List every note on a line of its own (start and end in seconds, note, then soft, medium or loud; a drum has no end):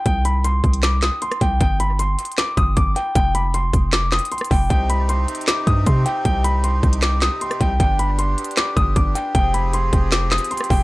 0.06 0.61 C2 loud
0.06 0.23 G5 medium
0.06 kick loud
0.06 closed hi-hat medium
0.25 0.42 B5 medium
0.25 closed hi-hat medium
0.44 0.81 C6 medium
0.44 closed hi-hat medium
0.64 1.10 C2 loud
0.64 kick medium
0.64 closed hi-hat soft
0.73 closed hi-hat medium
0.83 1.00 D6 medium
0.83 snare loud
0.83 clap medium
0.83 closed hi-hat medium
1.02 1.20 D#6 loud
1.02 snare loud
1.02 clap medium
1.02 closed hi-hat medium
1.22 1.39 C6 medium
1.22 closed hi-hat medium
1.32 cross-stick loud
1.32 closed hi-hat soft
1.41 1.60 C2 loud
1.41 1.59 G5 medium
1.41 kick loud
1.41 closed hi-hat medium
1.61 2.16 G1 loud
1.61 1.78 G5 medium
1.61 kick loud
1.61 closed hi-hat medium
1.80 1.97 B5 medium
1.80 closed hi-hat medium
1.99 2.36 C6 medium
1.99 closed hi-hat medium
2.19 closed hi-hat medium
2.25 closed hi-hat medium
2.32 closed hi-hat soft
2.38 2.55 D6 medium
2.38 snare loud
2.38 clap medium
2.38 closed hi-hat medium
2.57 2.76 G1 loud
2.57 2.75 D#6 medium
2.57 kick loud
2.57 closed hi-hat medium
2.77 2.95 G1 loud
2.77 2.94 D6 medium
2.77 kick loud
2.77 closed hi-hat medium
2.96 3.13 G5 medium
2.96 closed hi-hat medium
3.15 3.71 F1 loud
3.15 3.33 G5 loud
3.15 kick loud
3.15 closed hi-hat medium
3.35 3.52 B5 medium
3.35 closed hi-hat medium
3.54 3.91 C6 medium
3.54 closed hi-hat medium
3.73 4.20 F1 loud
3.73 kick medium
3.73 closed hi-hat medium
3.93 4.10 D6 medium
3.93 snare loud
3.93 clap medium
3.93 closed hi-hat medium
4.12 4.29 D#6 loud
4.12 snare loud
4.12 clap medium
4.12 closed hi-hat medium
4.19 closed hi-hat medium
4.25 closed hi-hat medium
4.32 4.49 C6 medium
4.32 closed hi-hat medium
4.38 cross-stick medium
4.38 closed hi-hat medium
4.45 closed hi-hat medium
4.51 4.70 F1 loud
4.51 4.68 G5 medium
4.51 kick loud
4.51 open hi-hat medium
4.70 5.26 C2 loud
4.70 7.77 C3 medium
4.70 7.77 C4 medium
4.70 7.77 D#4 medium
4.70 10.83 G4 medium
4.70 4.87 G5 loud
4.70 kick loud
4.70 closed hi-hat medium
4.90 5.07 B5 medium
4.90 closed hi-hat medium
5.09 5.45 C6 medium
5.09 closed hi-hat medium
5.28 closed hi-hat medium
5.35 closed hi-hat medium
5.41 closed hi-hat soft
5.47 5.65 D6 medium
5.47 snare loud
5.47 clap loud
5.47 closed hi-hat medium
5.67 5.86 G2 loud
5.67 5.84 D#6 medium
5.67 kick loud
5.67 closed hi-hat medium
5.86 6.05 C3 loud
5.86 6.04 C6 medium
5.86 kick medium
5.86 closed hi-hat medium
6.06 6.23 G5 medium
6.06 closed hi-hat medium
6.25 6.81 C2 loud
6.25 6.42 G5 medium
6.25 kick loud
6.25 closed hi-hat medium
6.44 6.62 B5 medium
6.44 closed hi-hat medium
6.64 7.00 C6 medium
6.64 closed hi-hat medium
6.83 7.30 C2 loud
6.83 kick medium
6.83 closed hi-hat soft
6.93 closed hi-hat medium
7.02 7.20 D6 medium
7.02 snare loud
7.02 clap medium
7.02 closed hi-hat medium
7.22 7.39 D#6 loud
7.22 snare medium
7.22 clap medium
7.22 closed hi-hat medium
7.41 7.59 C6 medium
7.41 closed hi-hat medium
7.51 cross-stick loud
7.51 closed hi-hat soft
7.61 7.79 C2 loud
7.61 7.78 G5 medium
7.61 kick loud
7.61 closed hi-hat medium
7.80 8.36 G1 loud
7.80 9.33 B3 medium
7.80 9.33 D4 medium
7.80 7.97 G5 medium
7.80 kick loud
7.80 closed hi-hat medium
7.99 8.17 B5 medium
7.99 closed hi-hat medium
8.19 8.55 C6 medium
8.19 closed hi-hat medium
8.38 closed hi-hat medium
8.44 closed hi-hat medium
8.51 closed hi-hat soft
8.57 8.75 D6 medium
8.57 snare loud
8.57 clap medium
8.57 closed hi-hat medium
8.77 8.95 G1 loud
8.77 8.94 D#6 loud
8.77 kick loud
8.77 closed hi-hat medium
8.96 9.15 G1 loud
8.96 9.13 D6 medium
8.96 kick medium
8.96 closed hi-hat medium
9.15 9.33 G5 medium
9.15 closed hi-hat medium
9.35 9.91 F1 loud
9.35 10.83 F3 medium
9.35 10.83 C4 medium
9.35 10.83 G#4 medium
9.35 9.52 G5 loud
9.35 kick loud
9.35 closed hi-hat medium
9.54 9.71 B5 medium
9.54 closed hi-hat medium
9.73 10.10 C6 medium
9.73 closed hi-hat medium
9.93 10.39 F1 loud
9.93 kick medium
9.93 closed hi-hat medium
10.12 10.29 D6 medium
10.12 snare loud
10.12 clap medium
10.12 closed hi-hat medium
10.31 10.49 D#6 loud
10.31 snare medium
10.31 clap medium
10.31 closed hi-hat medium
10.38 closed hi-hat medium
10.45 closed hi-hat medium
10.51 10.68 C6 medium
10.51 closed hi-hat medium
10.57 cross-stick medium
10.57 closed hi-hat medium
10.64 closed hi-hat medium
10.70 10.83 F1 loud
10.70 10.83 G5 medium
10.70 kick loud
10.70 open hi-hat medium